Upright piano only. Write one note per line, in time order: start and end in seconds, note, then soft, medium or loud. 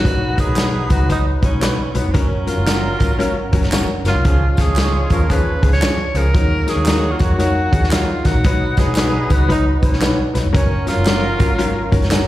0.04 0.22 F#3 medium
0.04 0.22 D#4 medium
0.04 0.23 B4 medium
0.37 0.48 F#3 medium
0.37 0.48 D#4 medium
0.37 0.48 A#4 medium
0.56 0.74 F#3 medium
0.56 0.75 D#4 medium
0.56 0.75 B4 medium
0.89 1.00 F#3 medium
0.89 1.01 D#4 medium
0.89 1.01 B4 medium
1.09 1.27 F#3 medium
1.09 1.27 D#4 medium
1.09 1.27 B4 medium
1.42 1.53 F#3 medium
1.42 1.53 D#4 medium
1.42 1.53 B4 medium
1.60 1.79 F#3 medium
1.60 1.80 D#4 medium
1.60 1.80 B4 medium
1.94 2.05 F#3 medium
1.94 2.05 D#4 medium
1.94 2.06 B4 medium
2.14 2.32 F#3 medium
2.14 2.32 C#4 medium
2.14 2.32 A#4 loud
2.47 2.58 F#3 medium
2.47 2.58 C#4 medium
2.47 2.58 A#4 medium
2.66 2.85 F#3 medium
2.66 2.85 C#4 medium
2.66 2.85 A#4 medium
3.00 3.10 F#3 medium
3.00 3.11 C#4 medium
3.00 3.11 A#4 medium
3.19 3.37 F#3 loud
3.19 3.37 C#4 loud
3.19 3.38 A#4 loud
3.53 3.63 F#3 medium
3.53 3.63 C#4 medium
3.53 3.63 A#4 loud
3.72 3.90 F#3 medium
3.72 3.90 C#4 medium
3.72 3.90 A#4 loud
4.06 4.16 F#3 medium
4.06 4.16 C#4 medium
4.06 4.16 A#4 medium
4.25 4.43 F3 medium
4.25 4.43 C#4 medium
4.25 4.43 G#4 loud
4.58 4.68 F3 medium
4.58 4.68 C#4 medium
4.58 4.69 G#4 medium
4.77 4.95 F3 medium
4.77 4.95 C#4 medium
4.77 4.95 G#4 medium
5.10 5.21 F3 medium
5.10 5.21 C#4 medium
5.10 5.21 F4 medium
5.30 5.48 F3 medium
5.30 5.48 C#4 medium
5.30 5.48 G#4 loud
5.62 5.73 F3 medium
5.62 5.73 C#4 medium
5.62 5.73 G#4 medium
5.82 6.00 F3 medium
5.82 6.00 C#4 medium
5.82 6.00 G#4 medium
6.15 6.26 F3 medium
6.15 6.26 C#4 medium
6.15 6.26 G#4 medium
6.34 6.52 F#3 medium
6.34 6.52 D#4 medium
6.34 6.53 A#4 loud
6.66 6.78 F#3 medium
6.66 6.78 D#4 medium
6.66 6.78 A#4 medium
6.87 7.05 F#3 medium
6.87 7.05 D#4 medium
6.87 7.05 A#4 medium
7.20 7.30 F#3 medium
7.20 7.31 D#4 medium
7.20 7.31 A#4 medium
7.39 7.57 F#3 medium
7.39 7.57 D#4 medium
7.39 7.57 A#4 medium
7.72 7.83 F#3 medium
7.72 7.83 D#4 medium
7.72 7.83 G#4 medium
7.91 8.10 F#3 medium
7.91 8.10 D#4 medium
7.91 8.10 A#4 medium
8.25 8.36 F#3 medium
8.25 8.36 D#4 medium
8.25 8.36 A#4 medium
8.45 8.63 F#3 medium
8.45 8.63 D#4 medium
8.45 8.63 B4 loud
8.78 8.88 F#3 medium
8.78 8.88 D#4 medium
8.78 8.89 B4 medium
8.97 9.15 F#3 medium
8.97 9.16 D#4 medium
8.97 9.15 B4 medium
9.29 9.40 F#3 medium
9.29 9.40 D#4 medium
9.29 9.41 B4 medium
9.48 9.67 F#3 medium
9.48 9.67 D#4 medium
9.48 9.67 B4 loud
9.82 9.93 F#3 medium
9.82 9.93 D#4 medium
9.82 9.93 B4 medium
10.01 10.19 F#3 medium
10.01 10.19 D#4 medium
10.01 10.20 B4 medium
10.33 10.45 F#3 medium
10.33 10.45 D#4 medium
10.33 10.45 B4 medium
10.53 10.72 F#3 medium
10.53 10.71 C#4 medium
10.53 10.72 A#4 loud
10.86 10.98 F#3 medium
10.86 10.98 C#4 medium
10.86 10.98 A#4 medium
11.06 11.24 F#3 medium
11.06 11.24 C#4 medium
11.06 11.25 F4 medium
11.39 11.50 F#3 medium
11.39 11.50 C#4 medium
11.39 11.51 A#4 medium
11.58 11.77 F#3 loud
11.58 11.77 C#4 medium
11.58 11.77 A#4 loud
11.92 12.03 F#3 medium
11.92 12.03 C#4 medium
11.92 12.03 A#4 loud
12.10 12.27 F#3 medium
12.10 12.27 C#4 medium
12.10 12.27 A#4 loud